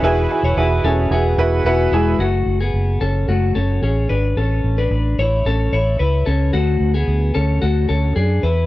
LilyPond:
<<
  \new Staff \with { instrumentName = "Analog synth pad" } { \time 4/4 \key fis \minor \tempo 4 = 110 <e e' fis' gis' b'>1 | r1 | r1 | r1 | }
  \new Staff \with { instrumentName = "Upright piano" } { \time 4/4 \key fis \minor <e' fis' gis'>8 <e' fis' gis'>8 <e' fis' gis'>8 <e' fis' gis'>8 <e' fis' gis'>8 <e' fis' b'>8 <e' fis' b'>8 <e' fis' gis'>8 | r1 | r1 | r1 | }
  \new Staff \with { instrumentName = "Clean electric guitar" } { \time 4/4 \key fis \minor <e' b'>8. <e' cis''>16 <e' b'>8 <cis' a'>8 <b gis'>4 <b fis'>8 <gis e'>8 | <a fis'>8. <b gis'>8. <cis' a'>8 <a fis'>8 <cis' a'>8 <cis' gis'>8 <d' b'>8 | <cis' a'>8. <d' b'>8. <e' cis''>8 <cis' a'>8 <e' cis''>8 <e' b'>8 <cis' a'>8 | <a fis'>8. <b gis'>8. <cis' a'>8 <a fis'>8 <cis' a'>8 <d' gis'>8 <e' b'>8 | }
  \new Staff \with { instrumentName = "Fingered electric bass" } { \clef bass \time 4/4 \key fis \minor e,,8 r16 e,,16 e,,8 e,,8 e,,8 e,,8 e,,8 e,,8 | fis,,8 fis,,8 fis,,8 fis,,8 fis,,8 fis,,8 a,,8 gis,,8 | a,,8 a,,8 a,,8 a,,8 a,,8 a,,8 cis,8 cis,8 | d,8 d,8 d,8 d,8 d,8 d,8 fis,8 e,8 | }
>>